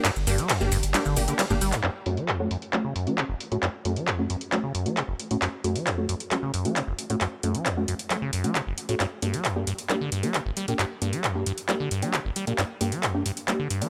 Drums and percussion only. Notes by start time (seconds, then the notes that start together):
0.05 clap, closed hi-hat, ride, shaker
0.16 shaker
0.27 open hi-hat, shaker
0.38 closed hi-hat, shaker
0.49 clap, closed hi-hat, ride, shaker
0.61 shaker
0.72 open hi-hat, shaker
0.83 closed hi-hat, shaker
0.94 clap, closed hi-hat, ride, shaker
1.06 shaker
1.17 open hi-hat, shaker
1.28 closed hi-hat, shaker
1.39 clap, closed hi-hat, ride, shaker
1.50 shaker
1.61 open hi-hat, shaker
1.72 clap, closed hi-hat, shaker
1.84 clap, closed hi-hat
2.06 closed hi-hat
2.17 closed hi-hat
2.28 clap, closed hi-hat
2.51 closed hi-hat
2.62 closed hi-hat
2.73 clap, closed hi-hat
2.96 closed hi-hat
3.07 closed hi-hat
3.18 clap, closed hi-hat
3.40 closed hi-hat
3.52 closed hi-hat
3.63 clap, closed hi-hat
3.85 closed hi-hat
3.96 closed hi-hat
4.08 clap, closed hi-hat
4.30 closed hi-hat
4.41 closed hi-hat
4.52 clap, closed hi-hat
4.75 closed hi-hat
4.86 closed hi-hat
4.97 clap, closed hi-hat
5.20 closed hi-hat
5.31 closed hi-hat
5.42 clap, closed hi-hat
5.64 closed hi-hat
5.76 closed hi-hat
5.87 clap, closed hi-hat
6.09 closed hi-hat
6.20 closed hi-hat
6.31 clap, closed hi-hat
6.54 closed hi-hat
6.65 closed hi-hat
6.76 clap, closed hi-hat
6.99 closed hi-hat
7.10 closed hi-hat
7.21 clap, closed hi-hat
7.43 closed hi-hat
7.55 closed hi-hat
7.66 clap, closed hi-hat
7.88 closed hi-hat
7.99 closed hi-hat
8.10 clap, closed hi-hat
8.33 closed hi-hat
8.44 closed hi-hat
8.55 clap, closed hi-hat
8.78 closed hi-hat
8.89 closed hi-hat
9.00 clap, closed hi-hat
9.22 closed hi-hat
9.34 closed hi-hat
9.45 clap, closed hi-hat
9.67 closed hi-hat
9.78 closed hi-hat
9.90 clap, closed hi-hat
10.12 closed hi-hat
10.23 closed hi-hat
10.34 clap, closed hi-hat
10.57 closed hi-hat
10.68 closed hi-hat
10.79 clap, closed hi-hat
11.02 closed hi-hat
11.13 closed hi-hat
11.24 clap, closed hi-hat
11.46 closed hi-hat
11.58 closed hi-hat
11.69 clap, closed hi-hat
11.91 closed hi-hat
12.02 closed hi-hat
12.14 clap, closed hi-hat
12.36 closed hi-hat
12.47 closed hi-hat
12.58 clap, closed hi-hat
12.81 closed hi-hat
12.92 closed hi-hat
13.03 clap, closed hi-hat
13.26 closed hi-hat
13.37 closed hi-hat
13.48 clap, closed hi-hat
13.70 closed hi-hat
13.82 closed hi-hat